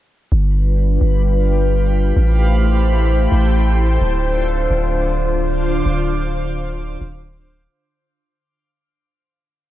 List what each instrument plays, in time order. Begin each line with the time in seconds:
0.32 808-style bass G1, ambient pad G3 D4 F4 B4, synth texture G4 F5 B5
1.01 808-style bass G1
2.16 808-style bass A1, ambient pad A3 E4 G4 C5, synth texture A4 G5 C6
3.32 808-style bass A1
4.01 808-style bass D1, ambient pad D3 D4 F4, synth texture C5 F5 D6
4.70 808-style bass D1
5.86 808-style bass D1
7.01 808-style bass D1